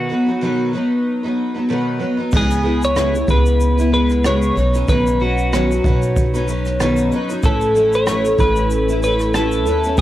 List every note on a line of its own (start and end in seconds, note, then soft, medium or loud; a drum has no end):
0.00 0.71 F#4 medium
0.00 0.10 B4 medium
0.09 0.27 F#3 soft
0.09 0.27 B3 medium
0.09 0.26 D#4 medium
0.09 0.25 B4 medium
0.26 0.41 F#3 soft
0.26 0.42 B3 soft
0.26 0.42 D#4 soft
0.26 0.41 B4 soft
0.41 0.73 B2 medium
0.41 0.73 D#3 medium
0.41 0.72 F#3 medium
0.41 0.73 B3 medium
0.41 0.74 D#4 medium
0.41 0.74 B4 medium
0.73 1.23 F#3 medium
0.73 1.23 B3 medium
0.73 1.23 D#4 medium
0.73 1.22 B4 medium
1.23 1.56 F#3 soft
1.23 1.55 B3 soft
1.23 1.54 D#4 medium
1.23 1.53 B4 medium
1.54 1.69 F#3 soft
1.54 1.69 B3 soft
1.54 1.69 D#4 soft
1.54 1.69 B4 soft
1.69 2.01 B2 medium
1.69 2.01 D#3 medium
1.69 1.98 F#3 medium
1.69 1.99 B3 medium
1.69 2.00 D#4 medium
1.69 2.01 B4 medium
1.99 2.18 F#3 medium
1.99 2.18 B3 medium
1.99 2.17 D#4 medium
1.99 2.16 B4 medium
2.17 2.32 F#3 soft
2.17 2.32 B3 soft
2.17 2.33 D#4 soft
2.17 2.32 B4 soft
2.31 3.25 C#2 medium
2.31 2.64 C#3 medium
2.31 2.62 G#3 medium
2.31 2.63 B3 medium
2.31 2.64 E4 medium
2.31 2.65 B4 medium
2.31 kick loud
2.31 crash medium
2.31 shaker medium
2.37 2.84 G#4 medium
2.50 shaker soft
2.63 2.96 G#3 medium
2.63 2.96 B3 medium
2.63 2.96 E4 medium
2.63 2.97 B4 medium
2.82 3.30 C#5 loud
2.82 shaker soft
2.96 3.14 C#3 medium
2.96 3.14 G#3 medium
2.96 3.14 B3 medium
2.96 3.14 E4 medium
2.96 3.12 B4 medium
2.96 cross-stick loud
2.96 shaker medium
3.13 3.28 B3 soft
3.13 3.29 E4 soft
3.13 3.28 B4 soft
3.13 shaker soft
3.28 4.52 C#2 medium
3.28 3.78 G#3 medium
3.28 3.79 B3 medium
3.28 3.78 E4 medium
3.28 3.89 B4 medium
3.28 3.76 B4 medium
3.28 kick medium
3.28 shaker soft
3.46 shaker soft
3.60 shaker medium
3.77 3.92 B3 soft
3.77 3.93 E4 soft
3.77 3.92 B4 medium
3.77 shaker soft
3.92 4.24 G#3 medium
3.92 4.24 B3 medium
3.92 4.25 E4 medium
3.92 4.23 B4 medium
3.92 4.25 B4 medium
4.09 cross-stick soft
4.09 shaker soft
4.24 4.56 C#3 medium
4.24 4.55 G#3 medium
4.24 4.56 B3 medium
4.24 4.57 E4 medium
4.24 4.57 B4 medium
4.24 4.89 C#5 medium
4.24 cross-stick medium
4.24 shaker medium
4.42 shaker soft
4.55 4.86 B1 medium
4.55 4.73 F#3 medium
4.55 4.74 C#4 medium
4.55 4.73 D#4 medium
4.55 4.72 B4 medium
4.55 shaker soft
4.73 4.88 F#3 soft
4.73 4.88 C#4 soft
4.73 4.88 D#4 soft
4.73 4.88 B4 medium
4.73 shaker medium
4.73 shaker soft
4.88 5.80 B1 medium
4.88 5.20 B2 medium
4.88 5.20 D#3 medium
4.88 5.19 F#3 medium
4.88 5.19 C#4 medium
4.88 5.21 D#4 medium
4.88 5.22 B4 medium
4.88 5.21 B4 medium
4.88 kick loud
4.88 shaker medium
5.07 shaker soft
5.07 shaker medium
5.20 5.52 F#3 medium
5.20 5.52 C#4 medium
5.20 5.53 D#4 medium
5.20 6.44 F#4 medium
5.20 5.53 B4 medium
5.38 shaker soft
5.39 shaker soft
5.52 5.70 B2 medium
5.52 5.70 D#3 medium
5.52 5.70 F#3 medium
5.52 5.70 C#4 medium
5.52 5.70 D#4 medium
5.52 5.69 B4 medium
5.52 cross-stick loud
5.52 shaker medium
5.70 5.83 F#3 soft
5.70 5.84 C#4 soft
5.70 5.85 D#4 soft
5.70 5.84 B4 soft
5.70 shaker soft
5.84 7.08 B1 medium
5.84 6.33 F#3 medium
5.84 6.34 C#4 medium
5.84 6.33 D#4 medium
5.84 6.32 B4 medium
5.84 kick medium
5.84 shaker soft
6.02 shaker soft
6.16 kick medium
6.16 shaker medium
6.34 6.46 F#3 medium
6.34 6.47 C#4 medium
6.34 6.48 D#4 medium
6.34 6.48 B4 medium
6.34 shaker soft
6.48 6.79 F#3 medium
6.48 6.80 C#4 medium
6.48 6.80 D#4 medium
6.48 6.80 B4 medium
6.48 shaker medium
6.65 cross-stick soft
6.65 shaker soft
6.80 7.12 B2 medium
6.80 7.12 D#3 medium
6.80 7.10 F#3 medium
6.80 7.11 C#4 medium
6.80 7.12 D#4 medium
6.80 7.12 B4 medium
6.80 cross-stick loud
6.80 shaker medium
6.96 shaker soft
6.96 shaker medium
7.11 7.29 F#3 medium
7.11 7.29 C#4 medium
7.11 7.28 D#4 medium
7.11 7.28 B4 medium
7.11 shaker soft
7.29 7.43 F#3 soft
7.29 7.42 C#4 soft
7.29 7.44 D#4 medium
7.29 7.43 B4 soft
7.29 shaker medium
7.29 shaker soft
7.43 8.35 A1 medium
7.43 7.73 A3 medium
7.43 7.74 C#4 medium
7.43 7.75 E4 medium
7.43 7.95 A4 medium
7.43 7.76 B4 medium
7.43 kick loud
7.43 shaker medium
7.61 shaker medium
7.61 shaker soft
7.74 8.05 A3 medium
7.74 8.06 C#4 medium
7.74 8.06 E4 medium
7.74 8.07 B4 medium
7.74 shaker soft
7.93 8.40 C#5 loud
7.93 shaker soft
8.07 8.24 A3 medium
8.07 8.25 C#4 medium
8.07 8.25 E4 medium
8.07 8.23 B4 medium
8.07 cross-stick loud
8.07 shaker medium
8.25 8.38 C#4 soft
8.25 8.39 E4 soft
8.25 8.39 B4 soft
8.25 shaker medium
8.39 9.67 A1 medium
8.39 8.88 A3 medium
8.39 8.89 C#4 medium
8.39 8.89 E4 medium
8.39 8.99 B4 loud
8.39 8.87 B4 medium
8.39 kick medium
8.39 shaker medium
8.56 shaker soft
8.70 shaker medium
8.88 9.02 C#4 soft
8.88 9.03 E4 soft
8.88 9.03 B4 medium
8.88 shaker soft
9.02 9.33 A3 medium
9.02 9.34 C#4 medium
9.02 9.34 E4 medium
9.02 9.35 B4 medium
9.02 shaker medium
9.19 cross-stick soft
9.19 shaker soft
9.34 9.64 A3 medium
9.34 9.66 C#4 medium
9.34 9.67 E4 medium
9.34 9.98 A4 medium
9.34 9.67 B4 medium
9.34 cross-stick loud
9.34 shaker medium
9.51 shaker medium
9.65 9.96 D#2 medium
9.65 9.84 A3 medium
9.65 9.84 C#4 soft
9.65 9.84 E4 medium
9.65 9.82 B4 medium
9.65 shaker soft
9.65 shaker medium
9.83 9.98 C#4 soft
9.83 9.99 E4 soft
9.83 9.98 B4 medium
9.83 shaker soft
9.83 shaker medium
9.97 10.01 G#1 loud
9.97 10.01 G#2 medium
9.97 10.01 E3 medium
9.97 10.01 G#3 medium
9.97 kick loud
9.97 shaker soft
9.97 shaker medium